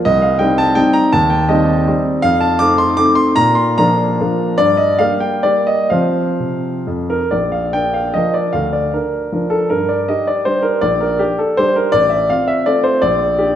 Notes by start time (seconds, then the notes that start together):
0.05 C2 D#5
0.22 F5
0.39 G3 C4 D#4 G5
0.58 A5
0.75 G3 C4 D#4 G5
0.93 A#5
1.13 D#2 A5
1.30 G5
1.49 G3 C4 D#4 D#5
1.88 G3 C4 D#4
2.22 F2 F5
2.41 A5
2.59 A3 C4 D#4 D6
2.78 C6
2.97 A3 C4 D#4 D6
3.15 C6
3.36 A#2 A#5
3.55 C6
3.78 F3 A#3 D4 A#5
4.21 F3 A#3 D4
4.58 G2 D5
4.77 D#5
4.99 G3 A#3 G4 F5
5.20 G5
5.43 G3 A#3 G4 D5
5.67 D#5
5.90 F3 C4 C5 F5
6.40 C3
6.87 F2
7.10 A#4
7.31 A#1 D5
7.52 F5
7.73 D4 A#4 G5
7.94 F5
8.14 F3 D4 A#4 D#5
8.34 D5
8.53 D2 F5
8.73 D5
8.94 D4 A#4
9.32 F3 D4 A#4
9.50 A4
9.70 G2 A#4
9.89 D5
10.09 D4 G4 D#5
10.27 D5
10.45 G3 D4 G4 C5
10.62 A#4
10.81 A#1 D5
11.00 A#4
11.19 D4 G4
11.39 A4
11.57 G3 D4 G4 C5
11.76 A#4
11.92 A1 D5
12.10 E5
12.30 C4 F4 F5
12.48 E5
12.66 A3 C4 F4 D5
12.84 C5
13.02 A#1 D5
13.39 D4 G4